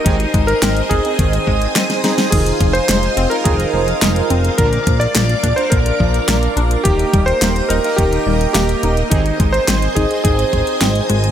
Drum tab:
CC |----------------|x---------------|----------------|----------------|
HH |xxxxxxxxxx-xxxxx|xxxxxxxxxx-xxxxx|xxxxxxxxxx-xxxxx|xxxxxxxxxx-xxxxx|
CP |----x-------x---|----x-------x---|----x-------x---|----x-------x---|
SD |----o-------oooo|----o-------o---|----o-------o---|----o-------o---|
BD |o-o---o-o-o-----|o-o-----o-------|o-o---o-o-o-----|o-o-----o-------|

CC |----------------|
HH |xxxxxxxxxxxxxxxx|
CP |----x-------x---|
SD |----o-------o---|
BD |o-o---o-o-o-----|